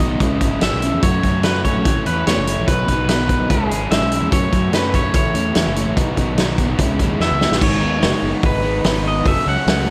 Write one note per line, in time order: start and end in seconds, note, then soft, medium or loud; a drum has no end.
0.00 0.20 B2 medium
0.00 0.20 D#3 medium
0.00 0.20 F#3 medium
0.00 0.20 B3 medium
0.00 0.21 D#4 medium
0.00 0.62 D#5 loud
0.11 0.20 B1 medium
0.20 0.39 C#2 medium
0.20 0.40 C#3 medium
0.20 0.40 G#3 medium
0.20 0.41 C#4 loud
0.20 0.41 E4 medium
0.20 kick medium
0.20 closed hi-hat medium
0.41 0.60 G#1 medium
0.41 0.61 C#3 medium
0.41 0.61 G#3 medium
0.41 0.62 C#4 medium
0.41 0.62 E4 medium
0.41 kick medium
0.41 closed hi-hat medium
0.61 0.71 G#1 medium
0.61 0.81 C#3 medium
0.61 0.82 G#3 medium
0.61 0.83 C#4 medium
0.61 0.83 E4 medium
0.61 1.01 E5 medium
0.61 snare loud
0.61 closed hi-hat medium
0.72 0.91 B1 medium
0.82 1.02 C#3 medium
0.82 1.02 G#3 medium
0.82 1.03 C#4 medium
0.82 1.03 E4 medium
0.82 closed hi-hat medium
0.93 1.02 E2 medium
1.02 1.22 F#2 medium
1.02 1.23 F#3 medium
1.02 1.24 A3 medium
1.02 1.24 C#4 medium
1.02 1.25 F#4 loud
1.02 1.44 C#5 medium
1.02 kick loud
1.02 closed hi-hat medium
1.23 1.70 F#2 medium
1.23 1.43 F#3 medium
1.23 1.43 A3 medium
1.23 1.45 C#4 medium
1.23 1.45 F#4 medium
1.23 kick medium
1.23 closed hi-hat soft
1.43 1.64 F#3 medium
1.43 1.64 A3 medium
1.43 1.65 C#4 medium
1.43 1.65 F#4 medium
1.43 1.64 B4 medium
1.43 snare loud
1.43 closed hi-hat medium
1.64 1.84 F#3 medium
1.64 1.85 A3 medium
1.64 1.85 C#4 medium
1.64 1.85 F#4 medium
1.64 2.06 C#5 medium
1.64 kick medium
1.64 closed hi-hat medium
1.75 1.84 A#1 medium
1.85 2.04 A1 medium
1.85 2.06 A2 loud
1.85 2.07 E3 medium
1.85 2.07 A3 medium
1.85 2.07 C#4 medium
1.85 2.08 E4 medium
1.85 kick loud
1.85 closed hi-hat medium
2.06 2.25 E2 medium
2.06 2.25 A2 medium
2.06 2.26 E3 medium
2.06 2.27 A3 medium
2.06 2.27 C#4 medium
2.06 2.28 E4 medium
2.06 2.27 B4 medium
2.06 closed hi-hat medium
2.27 2.36 E2 medium
2.27 2.46 A2 medium
2.27 2.47 E3 loud
2.27 2.48 A3 medium
2.27 2.48 C#4 loud
2.27 2.48 E4 medium
2.27 2.67 C#5 medium
2.27 snare medium
2.27 closed hi-hat medium
2.37 2.55 F#1 medium
2.47 2.67 A2 medium
2.47 2.67 E3 medium
2.47 2.67 A3 medium
2.47 2.67 C#4 medium
2.47 2.68 E4 medium
2.47 closed hi-hat medium
2.58 2.67 A#1 medium
2.68 2.86 B1 medium
2.68 2.87 B2 medium
2.68 2.88 D#3 medium
2.68 2.88 F#3 medium
2.68 2.89 B3 medium
2.68 2.89 D#4 medium
2.68 3.08 B4 medium
2.68 kick loud
2.68 closed hi-hat medium
2.88 3.35 B1 medium
2.88 3.07 B2 medium
2.88 3.08 D#3 medium
2.88 3.08 F#3 medium
2.88 3.09 B3 medium
2.88 3.09 D#4 medium
2.88 kick medium
2.88 closed hi-hat medium
3.08 3.28 B2 medium
3.08 3.29 D#3 medium
3.08 3.28 F#3 medium
3.08 3.29 B3 medium
3.08 3.30 D#4 medium
3.08 3.47 B4 medium
3.08 snare loud
3.08 closed hi-hat medium
3.29 3.49 B2 medium
3.29 3.49 D#3 medium
3.29 3.49 F#3 medium
3.29 3.49 B3 medium
3.29 3.50 D#4 medium
3.29 kick medium
3.29 closed hi-hat medium
3.40 3.49 B1 medium
3.49 3.69 C#2 medium
3.49 3.70 C#3 medium
3.49 3.70 G#3 medium
3.49 3.70 C#4 loud
3.49 3.71 E4 loud
3.49 3.93 G#4 medium
3.49 kick loud
3.49 closed hi-hat medium
3.70 3.89 G#1 medium
3.70 3.90 C#3 medium
3.70 3.91 G#3 medium
3.70 3.91 C#4 medium
3.70 3.92 E4 medium
3.70 closed hi-hat medium
3.91 4.00 G#1 medium
3.91 4.11 C#3 medium
3.91 4.12 G#3 medium
3.91 4.12 C#4 loud
3.91 4.13 E4 medium
3.91 4.33 E5 medium
3.91 snare loud
3.91 closed hi-hat medium
4.01 4.20 B1 medium
4.12 4.31 C#3 medium
4.12 4.31 G#3 medium
4.12 4.31 C#4 medium
4.12 4.32 E4 medium
4.12 closed hi-hat medium
4.22 4.31 E2 medium
4.31 4.51 F#2 medium
4.31 4.50 F#3 medium
4.31 4.51 A3 loud
4.31 4.52 C#4 medium
4.31 4.52 F#4 medium
4.31 4.75 C#5 medium
4.31 kick loud
4.31 closed hi-hat medium
4.51 4.99 F#2 medium
4.51 4.70 F#3 medium
4.51 4.71 A3 medium
4.51 4.71 C#4 medium
4.51 4.72 F#4 medium
4.51 kick medium
4.51 closed hi-hat medium
4.71 4.92 F#3 medium
4.71 4.93 A3 medium
4.71 4.93 C#4 medium
4.71 4.93 F#4 medium
4.71 4.95 B4 medium
4.71 snare loud
4.71 closed hi-hat medium
4.94 5.13 F#3 medium
4.94 5.13 A3 medium
4.94 5.13 C#4 medium
4.94 5.14 F#4 medium
4.94 5.14 C#5 medium
4.94 kick medium
4.94 closed hi-hat medium
5.04 5.13 F#2 medium
5.12 5.33 A1 medium
5.12 5.33 A2 medium
5.12 5.33 E3 medium
5.12 5.34 A3 medium
5.12 5.34 C#4 loud
5.12 5.35 E4 loud
5.12 7.17 C#5 medium
5.12 kick loud
5.12 closed hi-hat medium
5.34 5.53 E2 medium
5.34 5.54 A2 medium
5.34 5.54 E3 medium
5.34 5.54 A3 medium
5.34 5.55 C#4 medium
5.34 5.55 E4 medium
5.34 closed hi-hat medium
5.55 5.65 E2 medium
5.55 5.75 A2 medium
5.55 5.75 E3 medium
5.55 5.76 A3 medium
5.55 5.76 C#4 loud
5.55 5.77 E4 loud
5.55 snare loud
5.55 closed hi-hat medium
5.66 5.85 F#1 medium
5.76 5.96 A2 medium
5.76 5.96 E3 medium
5.76 5.96 A3 medium
5.76 5.97 C#4 medium
5.76 5.97 E4 medium
5.76 closed hi-hat medium
5.87 5.96 A1 medium
5.97 6.16 B1 loud
5.97 6.16 B2 medium
5.97 6.16 D#3 medium
5.97 6.17 F#3 medium
5.97 6.17 B3 medium
5.97 6.18 D#4 medium
5.97 kick loud
5.97 closed hi-hat medium
6.17 6.64 B1 medium
6.17 6.37 B2 medium
6.17 6.37 D#3 medium
6.17 6.38 F#3 medium
6.17 6.38 B3 medium
6.17 6.38 D#4 medium
6.17 kick medium
6.17 closed hi-hat medium
6.38 6.57 B2 medium
6.38 6.57 D#3 medium
6.38 6.58 F#3 medium
6.38 6.58 B3 medium
6.38 6.58 D#4 medium
6.38 snare loud
6.38 closed hi-hat medium
6.58 6.78 B2 medium
6.58 6.78 D#3 medium
6.58 6.79 F#3 medium
6.58 6.79 B3 medium
6.58 6.79 D#4 medium
6.58 kick medium
6.58 closed hi-hat medium
6.69 6.79 B1 medium
6.79 6.98 C#2 medium
6.79 6.99 C#3 medium
6.79 6.99 G#3 medium
6.79 7.00 C#4 loud
6.79 7.00 E4 medium
6.79 kick medium
6.79 closed hi-hat medium
6.99 7.18 D#2 medium
6.99 7.19 C#3 medium
6.99 7.20 G#3 medium
6.99 7.20 C#4 medium
6.99 7.20 E4 medium
6.99 kick medium
6.99 closed hi-hat medium
7.20 7.30 E2 medium
7.20 7.38 E3 loud
7.20 7.39 G#3 medium
7.20 7.40 B3 loud
7.20 7.41 E4 loud
7.20 7.63 E5 medium
7.20 snare medium
7.31 7.49 C#2 medium
7.39 7.60 E3 medium
7.39 7.60 G#3 medium
7.39 7.61 B3 medium
7.39 7.61 E4 medium
7.39 snare medium
7.51 7.60 A1 medium
7.51 snare medium
7.61 7.83 G#1 loud
7.61 7.81 G#2 medium
7.61 7.81 D#3 medium
7.61 7.81 G#3 medium
7.61 7.79 B3 medium
7.61 7.79 D#4 loud
7.61 8.47 C#5 medium
7.61 kick loud
7.61 crash loud
7.80 8.04 D#2 medium
7.80 8.24 G#2 medium
7.80 7.99 D#3 medium
7.80 8.01 G#3 medium
7.80 8.02 B3 medium
7.80 8.02 D#4 medium
8.00 8.12 F#1 medium
8.00 8.43 D#3 medium
8.00 8.23 G#3 medium
8.00 8.21 B3 medium
8.00 8.20 D#4 medium
8.00 snare loud
8.00 open hi-hat soft
8.21 8.32 F#1 medium
8.21 8.65 G#3 medium
8.21 8.63 B3 medium
8.21 8.61 D#4 medium
8.43 8.81 G#1 medium
8.43 9.09 B4 medium
8.43 kick loud
8.43 open hi-hat soft
8.62 8.85 G#3 medium
8.62 8.85 B3 medium
8.62 8.86 D#4 medium
8.84 9.22 G#1 medium
8.84 9.24 D#3 medium
8.84 9.07 G#3 medium
8.84 9.05 B3 medium
8.84 9.03 D#4 medium
8.84 snare loud
8.84 open hi-hat soft
9.04 9.26 G#3 medium
9.04 9.25 B3 medium
9.04 9.24 D#4 medium
9.04 9.26 D#5 medium
9.24 9.35 F#1 medium
9.24 9.47 F#2 medium
9.24 9.47 C#3 medium
9.24 9.46 F#3 medium
9.24 9.45 A3 loud
9.24 9.44 C#4 loud
9.24 9.48 E5 loud
9.24 kick loud
9.24 open hi-hat medium
9.45 9.56 C#2 medium
9.45 9.89 F#2 medium
9.45 9.65 C#3 medium
9.45 9.66 F#3 medium
9.45 9.68 A3 medium
9.45 9.68 C#4 medium
9.45 9.90 F#5 medium
9.66 9.86 C#2 medium
9.66 9.90 C#3 medium
9.66 9.89 F#3 medium
9.66 9.88 A3 medium
9.66 9.86 C#4 medium
9.66 snare loud
9.66 open hi-hat medium